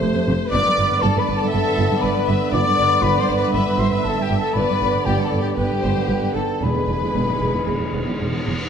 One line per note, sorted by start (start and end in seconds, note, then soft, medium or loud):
0.00 0.07 F1 medium
0.00 0.06 F2 medium
0.00 0.34 C3 medium
0.00 0.34 A3 medium
0.00 0.50 C5 medium
0.14 0.19 F2 medium
0.27 0.33 F1 medium
0.27 0.32 F2 medium
0.49 0.58 G1 medium
0.49 0.57 G2 medium
0.49 4.52 D3 medium
0.49 4.52 B3 medium
0.49 1.01 B4 medium
0.49 0.98 D5 loud
0.49 0.99 D5 loud
0.49 1.03 D6 loud
0.66 0.71 G2 medium
0.78 0.83 G1 medium
0.78 0.83 G2 medium
0.90 0.95 G2 medium
1.01 1.08 G1 medium
1.01 1.07 G2 medium
1.01 1.18 A4 medium
1.01 1.09 A4 medium
1.01 1.52 D5 medium
1.01 1.21 A5 loud
1.16 1.21 G2 medium
1.16 1.36 B4 medium
1.16 1.35 B5 medium
1.28 1.34 G1 medium
1.28 1.33 G2 medium
1.36 1.52 A4 medium
1.36 1.51 A4 medium
1.36 1.51 A5 medium
1.41 1.46 G2 medium
1.50 2.02 A4 loud
1.50 2.02 A4 medium
1.50 2.00 E5 medium
1.50 2.03 A5 loud
1.54 1.59 G1 medium
1.54 1.59 G2 medium
1.66 1.71 G2 medium
1.78 1.83 G1 medium
1.78 1.83 G2 medium
1.91 1.96 G2 medium
2.01 2.08 G1 medium
2.01 2.08 G2 medium
2.01 2.52 B4 medium
2.01 2.53 B4 medium
2.01 2.27 D5 medium
2.01 2.52 B5 medium
2.15 2.20 G2 medium
2.28 2.33 G1 medium
2.28 2.33 G2 medium
2.28 2.53 E5 medium
2.52 2.58 G1 medium
2.52 2.58 G2 medium
2.52 3.02 D5 medium
2.52 2.78 D5 medium
2.52 3.05 D5 medium
2.52 3.04 D6 loud
2.64 2.70 G2 medium
2.77 2.83 G1 medium
2.77 2.82 G2 medium
2.77 3.03 B4 medium
2.88 2.94 G2 medium
3.01 3.08 G1 medium
3.01 3.06 G2 medium
3.01 3.20 B4 medium
3.01 3.53 D5 medium
3.01 3.22 B5 loud
3.05 3.21 B4 medium
3.16 3.21 G2 medium
3.20 3.37 C5 medium
3.20 3.38 C5 medium
3.20 3.37 C6 medium
3.28 3.34 G1 medium
3.28 3.33 G2 medium
3.37 3.53 B4 medium
3.37 3.54 B4 medium
3.37 3.53 B5 medium
3.41 3.46 G2 medium
3.54 3.60 G1 medium
3.54 3.59 G2 medium
3.54 3.80 B4 medium
3.54 4.54 E5 medium
3.54 3.81 B5 medium
3.66 3.72 G2 medium
3.79 3.85 G1 medium
3.79 3.85 G2 medium
3.79 3.93 C5 medium
3.79 3.94 C6 loud
3.91 3.97 G2 medium
3.91 4.05 B4 medium
3.91 4.06 B4 medium
3.91 4.06 B5 medium
4.04 4.10 G1 medium
4.04 4.10 G2 medium
4.04 4.23 A4 medium
4.04 4.13 A4 medium
4.04 4.23 A5 medium
4.16 4.22 G2 medium
4.22 4.39 G4 medium
4.22 4.40 G4 medium
4.22 4.37 G5 medium
4.30 4.35 G1 medium
4.30 4.36 G2 medium
4.38 4.56 A4 medium
4.38 4.57 A4 medium
4.38 4.55 A5 medium
4.54 4.61 G1 medium
4.54 4.60 G2 medium
4.54 8.43 D3 medium
4.54 6.59 B3 medium
4.54 5.06 B4 medium
4.54 5.55 D5 medium
4.54 5.07 B5 medium
4.58 5.07 B4 medium
4.69 4.74 G2 soft
4.81 4.87 G1 medium
4.81 4.86 G2 medium
4.94 4.99 G2 medium
5.04 5.12 G1 medium
5.04 5.11 G2 medium
5.04 5.22 G4 medium
5.04 5.24 G4 medium
5.04 5.23 G5 medium
5.17 5.23 G2 medium
5.22 5.40 A4 medium
5.22 5.30 A5 medium
5.31 5.37 G1 soft
5.31 5.36 G2 soft
5.40 5.48 G2 medium
5.40 5.55 G4 medium
5.40 5.47 G4 medium
5.40 5.48 G5 medium
5.56 5.63 G1 soft
5.56 5.62 G2 medium
5.56 6.34 G4 medium
5.56 6.35 G4 medium
5.56 5.83 B4 medium
5.56 6.34 G5 medium
5.70 5.75 G2 soft
5.82 5.90 G1 medium
5.82 5.88 G2 medium
5.82 6.09 C5 medium
5.95 6.01 G2 medium
6.08 6.15 G1 soft
6.08 6.14 G2 soft
6.08 6.36 B4 medium
6.22 6.27 G2 medium
6.34 6.41 G1 soft
6.34 6.40 G2 soft
6.34 6.43 A4 medium
6.34 6.62 A4 medium
6.34 6.63 A4 medium
6.34 6.65 A5 medium
6.61 6.67 E1 medium
6.61 6.67 E2 medium
6.61 8.43 G#3 medium
6.61 8.47 G#4 medium
6.61 8.18 B4 medium
6.61 8.21 B4 medium
6.61 8.21 B5 medium
6.75 6.80 E2 soft
6.88 6.94 E1 soft
6.88 6.94 E2 soft
7.02 7.07 E2 soft
7.14 7.21 E1 medium
7.14 7.20 E2 medium
7.28 7.33 E2 soft
7.41 7.47 E1 soft
7.41 7.46 E2 soft
7.53 7.59 E2 medium
7.66 7.73 E1 soft
7.66 7.72 E2 soft
7.79 7.85 E2 soft
7.92 8.00 E1 medium
7.92 7.98 E2 medium
8.05 8.11 E2 soft
8.19 8.26 E1 soft
8.19 8.25 E2 soft
8.32 8.37 E2 medium
8.46 8.52 E1 soft
8.46 8.51 E2 soft